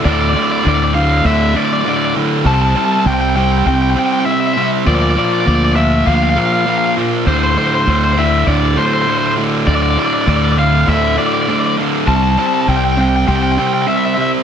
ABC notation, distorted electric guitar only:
X:1
M:4/4
L:1/8
Q:1/4=100
K:Dm
V:1 name="Distorted electric guitar" clef=bass
[D,,A,,D,] [D,,A,,D,] [D,,A,,D,] [D,,A,,D,] [D,,A,,D,] [D,,A,,D,] [D,,A,,D,] [D,,A,,D,] | [C,G,C] [C,G,C] [C,G,C] [C,G,C] [C,G,C] [C,G,C] [C,G,C] [C,G,C] | [B,,F,B,] [B,,F,B,] [B,,F,B,] [B,,F,B,] [B,,F,B,] [B,,F,B,] [B,,F,B,] [B,,F,B,] | [D,,A,,D,] [D,,A,,D,] [D,,A,,D,] [D,,A,,D,] [D,,A,,D,] [D,,A,,D,] [D,,A,,D,] [D,,A,,D,] |
[D,,A,,D,] [D,,A,,D,] [D,,A,,D,] [D,,A,,D,] [D,,A,,D,] [D,,A,,D,] [D,,A,,D,] [D,,A,,D,] | [C,G,C] [C,G,C] [C,G,C] [C,G,C] [C,G,C] [C,G,C] [C,G,C] [C,G,C] |]